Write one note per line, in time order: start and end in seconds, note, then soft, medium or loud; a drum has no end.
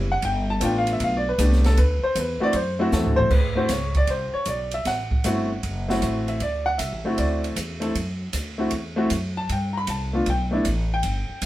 0.00 0.22 F#1 medium
0.12 0.24 F#5 loud
0.22 0.60 G1 medium
0.22 0.49 G5 medium
0.22 kick soft
0.22 ride medium
0.50 0.62 A5 loud
0.60 0.99 A1 loud
0.60 1.20 A3 medium
0.60 1.21 B3 medium
0.60 1.21 D4 medium
0.60 1.21 F4 medium
0.60 kick soft
0.60 hi-hat pedal medium
0.60 ride medium
0.65 0.76 G5 medium
0.78 0.89 F5 medium
0.87 ride medium
0.93 1.03 E5 medium
1.00 1.38 B1 medium
1.00 1.15 F5 medium
1.00 kick soft
1.00 ride medium
1.17 1.28 D5 medium
1.29 1.40 B4 loud
1.38 1.76 C2 loud
1.38 1.77 A3 medium
1.38 1.78 B3 medium
1.38 1.78 D4 medium
1.38 1.43 G4 medium
1.38 kick soft
1.38 hi-hat pedal medium
1.38 ride medium
1.44 1.67 G4 medium
1.52 snare soft
1.64 1.78 A4 loud
1.64 snare soft
1.64 ride soft
1.77 2.02 D2 medium
1.77 2.03 B4 medium
1.77 kick soft
1.77 ride medium
2.04 2.16 C5 medium
2.15 2.40 E2 medium
2.15 kick soft
2.15 hi-hat pedal medium
2.15 ride medium
2.20 2.43 B4 medium
2.40 2.53 A3 medium
2.40 2.53 C4 medium
2.40 2.53 E4 medium
2.40 2.53 F#4 medium
2.40 2.55 D5 loud
2.40 muted upright bass stroke soft
2.53 2.92 F#2 medium
2.53 2.80 C5 medium
2.53 kick soft
2.53 ride medium
2.79 3.29 A3 medium
2.79 3.29 C4 medium
2.79 3.29 E4 medium
2.79 3.30 F#4 loud
2.92 3.06 E2 loud
2.92 3.18 A4 medium
2.92 snare soft
2.92 hi-hat pedal medium
3.05 3.19 D2 medium
3.05 floor tom medium
3.16 3.30 C2 medium
3.16 3.30 C5 loud
3.16 floor tom medium
3.30 3.69 D2 medium
3.30 3.56 B4 medium
3.30 kick medium
3.30 crash medium
3.55 3.68 A3 medium
3.55 3.69 C4 medium
3.55 3.69 E4 medium
3.55 3.69 F#4 medium
3.55 3.70 C5 medium
3.69 4.07 C#2 medium
3.69 3.96 C#5 medium
3.69 kick soft
3.69 snare soft
3.69 hi-hat pedal medium
3.69 ride medium
3.94 4.09 D5 loud
3.94 kick medium
3.94 ride soft
4.07 4.32 C2 medium
4.07 4.35 C5 medium
4.07 kick soft
4.07 ride medium
4.34 4.47 C#5 loud
4.34 muted upright bass stroke soft
4.45 4.84 B1 medium
4.45 4.73 D5 medium
4.45 kick soft
4.45 hi-hat pedal medium
4.45 ride medium
4.71 4.86 E5 loud
4.71 ride soft
4.85 5.23 A1 medium
4.85 5.99 F#5 medium
4.85 kick soft
4.85 snare soft
4.85 ride medium
5.11 kick medium
5.24 5.62 G1 medium
5.24 5.48 A3 medium
5.24 5.48 C4 medium
5.24 5.49 E4 medium
5.24 5.49 F#4 medium
5.24 kick soft
5.24 hi-hat pedal medium
5.24 ride medium
5.63 6.01 F#1 medium
5.63 kick soft
5.63 ride medium
5.88 6.38 A3 medium
5.88 6.38 C4 medium
5.88 6.38 E4 medium
5.88 6.39 F#4 medium
5.88 snare soft
6.02 6.40 A1 medium
6.02 kick soft
6.02 hi-hat pedal medium
6.02 ride medium
6.28 6.41 E5 medium
6.28 ride soft
6.40 6.78 D2 medium
6.40 6.66 D5 medium
6.40 kick soft
6.40 ride medium
6.66 6.79 F#5 loud
6.78 6.92 C2 medium
6.78 7.15 E5 medium
6.78 kick soft
6.78 hi-hat pedal medium
6.78 ride medium
6.92 7.04 A1 medium
7.04 7.17 F#1 medium
7.04 7.54 A3 medium
7.04 7.54 C4 medium
7.04 7.54 E4 medium
7.04 7.55 F#4 medium
7.17 7.55 D2 medium
7.17 7.43 D5 medium
7.17 kick soft
7.17 ride medium
7.44 ride soft
7.56 7.94 E2 medium
7.56 kick soft
7.56 hi-hat pedal medium
7.56 ride medium
7.80 7.93 A3 medium
7.80 7.93 C4 medium
7.80 7.93 E4 medium
7.80 7.94 A4 medium
7.80 ride soft
7.95 8.32 F#2 medium
7.95 kick soft
7.95 ride medium
8.33 8.71 D2 medium
8.33 kick soft
8.33 hi-hat pedal medium
8.33 ride medium
8.58 8.70 A3 medium
8.58 8.71 C4 medium
8.58 8.71 E4 medium
8.58 8.71 F#4 medium
8.70 9.09 E2 medium
8.70 kick soft
8.70 ride medium
8.96 9.09 A3 medium
8.96 9.09 C4 medium
8.96 9.10 E4 medium
8.96 9.10 F#4 medium
9.10 9.48 F#2 medium
9.10 kick soft
9.10 hi-hat pedal medium
9.10 ride medium
9.37 9.49 A5 loud
9.49 9.87 G2 medium
9.49 9.76 G5 medium
9.49 kick soft
9.49 ride medium
9.73 9.75 A#5 medium
9.77 9.89 B5 loud
9.87 10.25 C2 medium
9.87 10.25 A5 medium
9.87 kick soft
9.87 hi-hat pedal medium
9.87 ride medium
10.13 10.25 A3 medium
10.13 10.26 B3 medium
10.13 10.26 D4 medium
10.13 10.26 F4 medium
10.26 10.64 B1 medium
10.26 10.44 G5 medium
10.26 kick soft
10.26 ride medium
10.51 10.63 A3 medium
10.51 10.64 B3 medium
10.51 10.64 D4 medium
10.51 10.64 E4 medium
10.65 11.02 A1 medium
10.65 kick soft
10.65 hi-hat pedal medium
10.65 ride medium
10.94 11.40 G5 loud
11.03 11.27 G1 medium
11.03 kick soft
11.03 ride medium
11.29 muted upright bass stroke soft
11.42 11.46 D2 medium
11.42 kick soft
11.42 hi-hat pedal medium
11.42 ride medium